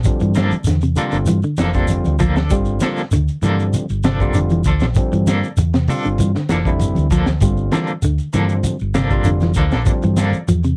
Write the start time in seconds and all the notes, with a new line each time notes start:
0.04 D3 F3 G3 C4, kick, closed hi-hat, shekere
0.20 G2 E3, closed hi-hat, shekere
0.34 F3 A#3 D4 A4, snare, closed hi-hat, high conga, shekere
0.51 closed hi-hat, high conga, shekere
0.64 E2 D3, closed hi-hat, low conga, shekere
0.68 snare
0.81 C3, closed hi-hat, shekere
0.96 D3 F3 G3 A#3 C4 D4 F4 A4, closed hi-hat, low conga, shekere
1.12 G1 D3, closed hi-hat, shekere
1.26 G2 E3, closed hi-hat, high conga, low conga, shekere
1.42 D3, shekere
1.57 F1 E3 F3 A#3 D4 A4, snare, closed hi-hat, high conga, shekere
1.74 D3 G3 A#3 C4 D4 F4 A4, kick, snare, shekere
1.87 closed hi-hat, high conga, shekere
2.05 D2, closed hi-hat, high conga, shekere
2.19 F3 A#3 D4 A4, kick, closed hi-hat, low conga, shekere
2.36 D4 A4, muted clean electric guitar stroke, snare, high conga, shekere
2.50 G1 D3 G3 C4 F4, kick, closed hi-hat, shekere
2.65 shekere
2.80 F3 A#3 D4 A4, muted clean electric guitar stroke, snare, closed hi-hat, high conga, shekere
2.97 snare, closed hi-hat, shekere
3.11 D2 D3, closed hi-hat, low conga, shekere
3.28 closed hi-hat, shekere
3.42 G2 D3 E3 F3 G3 A#3 C4 D4 A4, closed hi-hat, low conga, shekere
3.59 closed hi-hat, shekere
3.73 closed hi-hat, high conga, low conga, shekere
3.89 G1, shekere
4.03 C3 F3 D4 A4, snare, closed hi-hat, high conga, shekere
4.20 D3 G3 A#3 C4 D4 F4 A4, kick, shekere
4.34 F1 D3, closed hi-hat, high conga, shekere
4.50 E3, closed hi-hat, high conga, shekere
4.64 D2 F3 D4 A4, kick, closed hi-hat, low conga, shekere
4.80 A#1, snare, high conga, shekere
4.95 D3 F3 G3 C4, kick, closed hi-hat, shekere
5.12 G2 E3, closed hi-hat, shekere
5.27 A#3 D4 A4, snare, closed hi-hat, high conga, shekere
5.44 closed hi-hat, shekere
5.57 E2, muted clean electric guitar stroke, closed hi-hat, low conga, shekere
5.74 C3, snare, closed hi-hat, shekere
5.88 D3 G3 C4 D4 F4 A4, muted clean electric guitar stroke, open hi-hat, low conga, shekere
6.03 G1 D3, closed hi-hat, shekere
6.18 G2 E3, closed hi-hat, high conga, low conga, shekere
6.35 D3, snare, shekere
6.49 F1 E3 F3 A#3 D4 A4, snare, closed hi-hat, high conga, shekere
6.65 D3 G3 C4 E4, kick, shekere
6.80 closed hi-hat, high conga, shekere
6.95 D2, closed hi-hat, high conga, shekere
7.10 F3 A#3 D4 A4, kick, closed hi-hat, low conga, shekere
7.26 snare, high conga, shekere
7.40 G1 D3 G3 C4 F4, kick, closed hi-hat, shekere
7.57 shekere
7.72 E3 F3 A#3 D4 A4, snare, closed hi-hat, high conga, shekere
7.87 closed hi-hat, shekere
8.02 D2 D3, closed hi-hat, shekere
8.18 closed hi-hat, shekere
8.33 G2 D3 E3 F3 G3 A#3 C4 D4 A4, closed hi-hat, low conga, shekere
8.49 closed hi-hat, shekere
8.63 closed hi-hat, high conga, low conga, shekere
8.79 G1, shekere
8.94 C3 F3 A#3 D4 A4, snare, closed hi-hat, high conga, shekere
9.10 D3 G3 A#3 C4 D4 F4 A4, kick, shekere
9.24 F1 D3, closed hi-hat, high conga, shekere
9.40 E3, snare, closed hi-hat, high conga, shekere
9.54 D2 F3 A#3 D4 A4, kick, closed hi-hat, low conga, shekere
9.71 A#1 A#3 D4 A4, snare, shekere
9.85 D3 F3 G3 C4, kick, closed hi-hat, shekere
10.02 G2 E3, closed hi-hat, shekere
10.17 F3 A#3 D4 A4, snare, closed hi-hat, high conga, shekere
10.33 closed hi-hat, high conga, shekere
10.48 E2 F3, closed hi-hat, shekere
10.64 C3, closed hi-hat, shekere